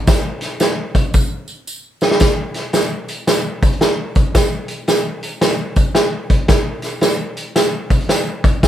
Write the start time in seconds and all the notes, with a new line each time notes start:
0.07 kick, snare, closed hi-hat, tambourine
0.41 snare, closed hi-hat, tambourine
0.60 snare, closed hi-hat, tambourine
0.95 kick, closed hi-hat, tambourine
1.14 kick, tambourine
1.48 tambourine
1.67 tambourine
2.01 snare, tambourine
2.11 snare
2.20 kick, snare, closed hi-hat, tambourine
2.54 snare, closed hi-hat, tambourine
2.73 snare, closed hi-hat, tambourine
3.08 closed hi-hat, tambourine
3.27 snare, closed hi-hat, tambourine
3.63 kick, closed hi-hat, tambourine
3.72 closed hi-hat
3.81 snare, closed hi-hat, tambourine
4.15 kick, closed hi-hat, tambourine
4.35 kick, snare, closed hi-hat, tambourine
4.68 closed hi-hat, tambourine
4.88 snare, closed hi-hat, tambourine
5.23 closed hi-hat, tambourine
5.41 snare, closed hi-hat, tambourine
5.76 kick, closed hi-hat, tambourine
5.95 snare, closed hi-hat, tambourine
6.30 kick, closed hi-hat, tambourine
6.48 kick, snare, closed hi-hat, tambourine
6.82 snare, closed hi-hat, tambourine
7.01 snare, closed hi-hat, tambourine
7.37 closed hi-hat, tambourine
7.56 snare, closed hi-hat, tambourine
7.90 kick, closed hi-hat, tambourine
8.01 closed hi-hat
8.09 snare, closed hi-hat, tambourine
8.44 kick, closed hi-hat, tambourine
8.63 kick, snare, closed hi-hat, tambourine